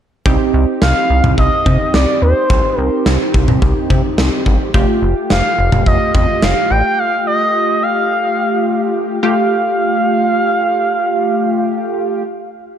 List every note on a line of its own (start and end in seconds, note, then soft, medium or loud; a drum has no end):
0.26 0.38 C2 loud
0.26 4.70 C4 medium
0.26 4.70 D#4 medium
0.26 4.70 G4 medium
0.26 kick loud
0.54 0.66 C2 loud
0.82 0.94 C2 loud
0.82 1.34 F5 loud
0.82 snare loud
1.10 1.22 C2 medium
1.24 1.36 C2 medium
1.24 mid tom medium
1.38 1.50 C2 loud
1.38 1.96 D#5 loud
1.38 kick medium
1.66 1.78 C3 loud
1.66 kick medium
1.66 mid tom medium
1.94 2.06 C2 loud
1.94 2.22 D5 medium
1.94 snare loud
2.22 2.34 D#2 medium
2.22 2.80 C5 medium
2.50 2.62 C2 loud
2.50 kick loud
2.78 2.90 C2 loud
2.78 3.02 A#4 medium
3.06 3.18 C2 loud
3.06 snare loud
3.34 3.46 C2 loud
3.34 kick medium
3.48 3.60 C2 medium
3.48 mid tom medium
3.62 3.74 C2 loud
3.62 kick medium
3.90 4.02 C3 loud
3.90 kick medium
3.90 mid tom medium
4.18 4.30 C2 loud
4.18 snare loud
4.46 4.58 G1 medium
4.46 kick medium
4.74 4.86 F1 loud
4.74 9.19 A3 medium
4.74 9.19 F4 medium
4.74 9.19 G4 medium
4.74 kick loud
5.02 5.14 F1 loud
5.30 5.42 F1 loud
5.30 5.83 F5 medium
5.30 snare loud
5.58 5.70 F1 loud
5.72 5.84 F1 loud
5.72 mid tom medium
5.86 5.98 F1 loud
5.86 6.13 D#5 medium
5.86 kick medium
6.15 6.26 F2 loud
6.15 6.44 D#5 medium
6.15 kick medium
6.15 mid tom medium
6.42 6.54 F1 loud
6.42 6.72 F5 loud
6.42 snare loud
6.71 6.82 A1 loud
6.71 7.00 G5 loud
6.99 7.26 F5 loud
7.27 7.84 D#5 loud
7.83 8.95 F5 loud
9.23 12.23 A3 medium
9.23 12.23 F4 medium
9.23 12.23 G4 medium
9.23 12.23 F5 medium